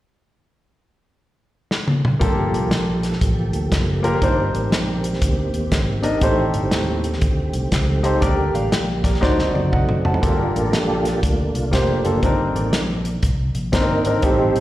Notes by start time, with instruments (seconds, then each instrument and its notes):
1.71 snare
1.88 high tom
2.05 mid tom
2.19 fingered electric bass G1, grand piano G2 A#3 F4 G4 A4, tonewheel organ F3 A#3 G4 A4, kick, closed hi-hat
2.52 fingered electric bass C2, closed hi-hat
2.71 fingered electric bass A#1, snare, closed hi-hat
3.03 snare, closed hi-hat
3.12 snare
3.21 fingered electric bass A1, kick, closed hi-hat
3.52 fingered electric bass D2, closed hi-hat
3.71 fingered electric bass F#1, kick, snare, closed hi-hat
4.03 grand piano A#3 F4 G4 A#4, closed hi-hat
4.22 fingered electric bass G1, grand piano G2 D4 D#4 A#4 C5, tonewheel organ D#3 C4 G4, kick, closed hi-hat
4.53 fingered electric bass A1, closed hi-hat
4.71 fingered electric bass A#1, snare, closed hi-hat
5.04 closed hi-hat
5.13 snare
5.22 fingered electric bass D2, kick, closed hi-hat
5.53 fingered electric bass D#2, closed hi-hat
5.71 fingered electric bass G#1, kick, snare, closed hi-hat
6.02 grand piano D4 D#4 A#4 D#5, closed hi-hat
6.21 fingered electric bass A1, grand piano A2 D#4 G4 A4 C5, tonewheel organ D#3 A3, kick, closed hi-hat
6.53 fingered electric bass G1, closed hi-hat
6.71 fingered electric bass D#2, snare, closed hi-hat
7.04 closed hi-hat
7.13 snare
7.21 fingered electric bass D2, kick, closed hi-hat
7.53 fingered electric bass C2, closed hi-hat
7.72 fingered electric bass C#2, kick, snare, closed hi-hat
8.03 grand piano D#4 G4 A4 C5, closed hi-hat
8.21 fingered electric bass D2, grand piano D3 D4 G4 A#4 D5, tonewheel organ G3 A#3 G4, kick, closed hi-hat
8.54 fingered electric bass A1, grand piano D5 F5, closed hi-hat
8.72 fingered electric bass A#1, grand piano G5, snare, closed hi-hat
9.04 grand piano A#4 D5, kick, snare, closed hi-hat
9.14 snare
9.21 fingered electric bass D2, grand piano D3 D#4 F#4 C5 D5, tonewheel organ F#3 C4 D#4, kick, snare
9.39 snare
9.54 fingered electric bass F#2, grand piano D5, high tom
9.72 fingered electric bass F#1, tonewheel organ A3 C4 F#4, grand piano D#5 F#5, kick, mid tom
9.89 mid tom
10.05 grand piano F#5 A5, floor tom
10.14 floor tom
10.21 fingered electric bass G1, grand piano G2 A#3 F4 G4 A4, tonewheel organ D4 F4 A#4, kick, closed hi-hat
10.54 fingered electric bass A1, tonewheel organ A#3 F4 A4, closed hi-hat
10.71 fingered electric bass A#1, tonewheel organ A#3 D4 G4, snare, closed hi-hat
11.05 snare, closed hi-hat
11.23 fingered electric bass D2, tonewheel organ A3 A#3 F4, kick, closed hi-hat
11.54 fingered electric bass C2, tonewheel organ F4, closed hi-hat
11.71 fingered electric bass F1, grand piano A#3 F4 G4 C5, tonewheel organ A#3 D4 G4, kick, snare, closed hi-hat
12.04 fingered electric bass F#1, grand piano A#3 F4 G4 A4, closed hi-hat
12.23 fingered electric bass G1, grand piano G2 C4 D4 D#4 A#4, kick, closed hi-hat
12.54 fingered electric bass A1, tonewheel organ D#3 A#3 D5, closed hi-hat
12.72 fingered electric bass A#1, snare, closed hi-hat
13.05 closed hi-hat
13.23 fingered electric bass C2, kick, closed hi-hat
13.55 fingered electric bass A#1, closed hi-hat
13.72 fingered electric bass G1, tonewheel organ A#3 D4 D#4, grand piano C4 D4 D#4 A#4, kick, snare, closed hi-hat
13.76 tonewheel organ A#4
14.05 fingered electric bass G#1, grand piano C4 D4 D#4 A#4, closed hi-hat
14.22 fingered electric bass A1, grand piano A2 C4 D#4 G4 A4, tonewheel organ G3 C4 D#4 G4 C5, kick, closed hi-hat
14.55 fingered electric bass A#1, closed hi-hat